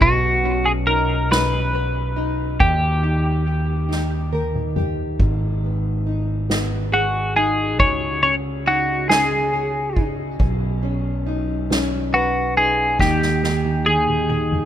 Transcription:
Already playing: C#4 D#4
0.00 B1 B2 F#4, kick, ride
0.44 C#4, ride
0.66 G#4
0.87 D#4 A#4, ride
1.31 C#4 B4, snare, ride
1.73 B4, ride
2.16 D#4, ride
2.59 D#2 D#3 G4, kick, ride
3.03 D#4, ride
3.46 G4, ride
3.89 D#4, snare
4.33 A#4, high tom
4.55 mid tom
4.76 G4, mid tom
5.19 G#1 G#2, kick, ride
5.62 B3, ride
6.06 D#4, ride
6.49 B3, snare, ride
6.92 F#4 G#4, ride
7.36 D#4 G#4, ride
7.79 C#2 C#3 C#5, kick, ride
8.22 C#4 C#5, ride
8.65 D#4 F#4, ride
9.10 C#4 G#4, snare
9.53 G#4, ride
9.97 D#4, kick, ride
10.39 B1 B2, kick, ride
10.82 C#4, ride
11.26 D#4, ride
11.70 C#4, snare, ride
12.13 F#4 B4, ride
12.56 D#4 G#4, ride
12.99 D#2 D#3 G4, kick, snare
13.22 snare
13.43 D#4, snare
13.65 high tom
13.86 G#4, high tom
14.08 mid tom
14.30 D#4, mid tom
14.52 mid tom

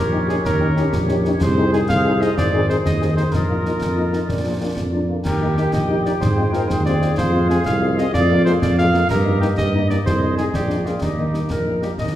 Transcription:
Already playing: A#1 G4 A#4 C#5
0.12 C#4 D#4 G4
0.28 C#4 D#4 G4 G#4, snare
0.45 D#2 A#4, concert bass drum, snare
0.61 C#4 D#4 G4
0.76 C#4 D#4 G4, snare
0.93 A#1, concert bass drum, snare
1.09 C#4 D#4 G4, snare
1.25 C#4 D#4 G4, snare
1.41 C2 G#4 C5, concert bass drum, snare, crash
1.57 C4 D#4 G#4
1.73 C4 D#4 G#4, snare
1.88 C2 F5, concert bass drum, snare
2.05 C4 D#4 G#4
2.21 C4 D#4 G#4 D#5, snare
2.37 G#1 D5, concert bass drum, snare
2.54 C4 D#4 G#4
2.69 C4 D#4 G#4 C5, snare
2.85 D#2 D#5, concert bass drum, snare
3.01 C4 D#4 G#4, snare
3.17 C4 D#4 G#4 C5, snare
3.32 A#1 F4 A#4 D#5, concert bass drum, snare
3.49 A#3 D#4 F4
3.65 A#3 D#4 F4, snare
3.81 F2, concert bass drum, snare
3.97 A#3 D#4 F4
4.12 A#3 D#4 F4, snare
4.28 A#1 D5, concert bass drum, snare
4.45 A#3 D4 F4
4.61 A#3 D4 F4
4.77 F2, concert bass drum, snare
4.93 A#3 D4 F4
5.09 A#3 D4 F4
5.25 D#2 G4 A#4 G5, concert bass drum, snare, crash
5.41 A#3 D#4 G4
5.57 A#3 D#4 G4, snare
5.73 A#1 D#5, concert bass drum, snare
5.89 A#3 D#4 G4
6.05 A#3 D#4 G4 D5, snare
6.21 G#2 G#4 C5, concert bass drum, snare
6.37 G#3 C4 F4
6.53 G#3 C4 F4 A#4, snare
6.69 D#2 C5, concert bass drum, snare
6.85 G#3 C4 F4 D5, snare
7.01 G#3 C4 F4, snare
7.18 F2 C5 F5, concert bass drum, snare
7.33 G#3 C4 F4
7.50 G#3 C4 F4 G#4, snare
7.66 C2 F5, concert bass drum, snare
7.82 G#3 C4 F4
7.97 G#3 C4 F4 D#5, snare
8.14 F2 G#4 D5 F5, concert bass drum, snare
8.30 G#3 A#3 F4
8.45 G#3 A#3 F4 C5, snare
8.62 F2 D5, concert bass drum, snare
8.78 G#3 A#3 F4 F5, snare
8.94 G#3 A#3 F4, snare
9.10 G2 G4 A#4 D#5, concert bass drum, snare, crash
9.25 G3 A#3 D#4
9.41 G3 A#3 D#4 G4, snare
9.57 G2 D#5, concert bass drum, snare
9.73 G3 A#3 D#4
9.89 G3 A#3 D#4 D5, snare
10.06 C2 G#4 C5, concert bass drum, snare
10.22 G#3 D#4
10.38 G#3 D#4 G#4, snare
10.54 A#1 G4 D5, concert bass drum, snare
10.69 G#3 A#3 D4, snare
10.86 G#3 A#3 D4 F4, snare
11.02 D#2 D#4 G4 D#5, concert bass drum, snare
11.18 G3 A#3 D#4
11.34 G3 A#3 D#4, snare
11.50 A#1 A#4, concert bass drum, snare
11.65 G3 A#3 D#4
11.82 G3 A#3 D#4 G4, snare
11.98 D#2 D#5, concert bass drum, snare

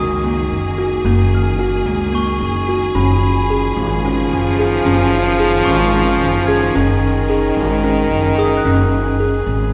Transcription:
Already playing: C#2 D#3 A#3 G#4 C#6 D#6
0.24 A#3
0.50 F#1
0.78 F#4
1.04 F#1 A#3
1.35 F6
1.59 F#4
1.85 C#2
2.13 A#3 C#6
2.40 F#1
2.69 F#4
2.95 F#1 D#3 F3 C#4 B5
3.50 G#4
3.77 G#1
4.05 C#4
4.31 F#1
4.59 G#4
4.85 F#1 C#4
5.40 G#4
5.65 G#1 C#6
5.95 C#4
6.21 F#1
6.47 G#4 G#6
6.75 F#1 D#3 C#4
7.30 G#4
7.57 G#1
7.84 C#4
8.11 F#1
8.38 G#4 D#6
8.57 F#6
8.65 F#1 C#4
9.20 G#4
9.47 G#1

